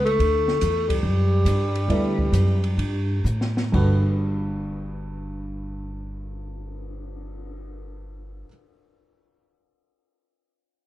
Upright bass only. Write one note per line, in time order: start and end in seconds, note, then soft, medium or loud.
0.00 0.18 C#2 medium
0.19 0.59 D2 medium
0.62 1.02 E2 medium
1.03 1.44 F#2 medium
1.45 1.87 G2 medium
1.88 2.31 D2 medium
2.32 2.76 F#2 medium
2.77 3.23 G2 medium
3.24 3.71 A2 medium
3.74 8.42 G1 medium